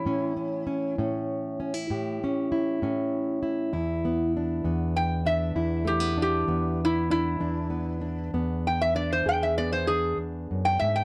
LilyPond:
<<
  \new Staff \with { instrumentName = "Resonator guitar played with a steel bar" } { \time 12/8 \key e \dorian \tempo 4. = 65 e'4. r1 r8 | r2 g''8 e''4 g'8 g'4 e'8 e'8~ | e'4. r8 g''16 e''16 d''16 c''16 g''16 e''16 d''16 c''16 gis'8 r8. g''16 e''16 g''16 | }
  \new Staff \with { instrumentName = "Steel-string acoustic guitar" } { \time 12/8 \key e \dorian << { <e cis'>8 cis'8 cis'8 cis'4 cis'16 e'16 g'8 cis'8 e'8 cis'4 e'8 | e'8 b8 d'8 b4 d'8 e'8 a16 b16 d'8 b4 d'8 | d'8 b8 d'8 b4 d'8 gis'8 b8 d'2 | } \\ { a,4. a,4. a,4. a,4. | e,4. e,4. e,4. e,4. | e,4. e,4. e,4. e,8 fis,8 gis,8 | } >> }
>>